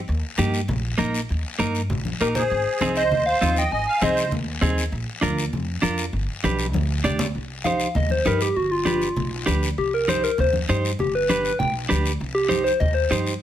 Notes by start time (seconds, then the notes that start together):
0.08 D#2, long guiro
0.38 G2 A#3 D#4 G4, high conga, short guiro
0.54 short guiro
0.68 A#1, low conga, long guiro
0.98 A#1 A#3 D#4 A#4, high conga, short guiro
1.14 short guiro
1.29 D#2, long guiro
1.59 G2 A#3 D#4 A#4, high conga, short guiro
1.75 short guiro
1.90 A#1, low conga, long guiro
2.05 high conga
2.21 A#1 A#3 D#4 G4 A#4, short guiro
2.35 G#4 C5, low conga, short guiro
2.50 G#1, long guiro
2.81 C2 C4 D#4 G#4, high conga, short guiro
2.96 C5 D#5, short guiro
3.11 D#2, low conga, long guiro
3.26 C5 F5
3.41 D#2 C4 D#4 F4, high conga, short guiro
3.56 D#5 G5, short guiro
3.71 G#1 D#5 G#5, long guiro
3.87 F5 G#5
4.01 C2 C4 D#4 G#4 C5 D#5, high conga, short guiro
4.17 short guiro
4.31 D#2, low conga, long guiro
4.61 D#2 C4 D#4 G#4, high conga, low conga, short guiro
4.78 short guiro
4.92 A#1, long guiro
5.21 D2 D4 F4 A#4, high conga, short guiro
5.38 short guiro
5.53 F2, low conga, long guiro
5.82 F2 D4 F4 A#4, high conga, short guiro
5.98 short guiro
6.13 G1, long guiro
6.44 B1 D4 G4 B4, high conga, short guiro
6.59 short guiro
6.73 D2, high conga, long guiro
7.04 D2 D4 G4 D5, low conga, short guiro
7.19 low conga, short guiro
7.35 C2, long guiro
7.64 D#4 G4 C5 F5, high conga, short guiro
7.80 short guiro
7.95 D#2 D#5, low conga, long guiro
8.10 C5, high conga
8.25 G2 D#4 G4 A#4 B4, high conga, short guiro
8.41 G4, short guiro
8.56 G1 F#4, long guiro
8.71 F4
8.85 D4 F4 G4 B4, high conga, short guiro
9.02 short guiro
9.16 B1, low conga, long guiro
9.46 D2 D4 G4 B4, high conga, short guiro
9.63 short guiro
9.78 C2 G4, long guiro
9.94 A#4
10.08 D#4 G4 C5, high conga, short guiro
10.24 A#4, short guiro
10.38 D#2 C5, low conga, long guiro
10.53 high conga
10.69 G2 D#4 G4 C5, high conga, short guiro
10.85 short guiro
10.99 G1 G4, low conga, long guiro
11.15 B4
11.29 D4 G4 B4, high conga, short guiro
11.45 B4, short guiro
11.59 B1 G5, low conga, long guiro
11.89 D2 D4 G4 B4, high conga, short guiro
12.06 short guiro
12.20 C2, long guiro
12.35 G4
12.49 D#4 G4 C5, high conga, short guiro
12.64 C5, short guiro
12.80 D#2 D#5, low conga, long guiro
12.94 C5
13.11 G2 D#4 G4 C5, high conga, short guiro
13.27 short guiro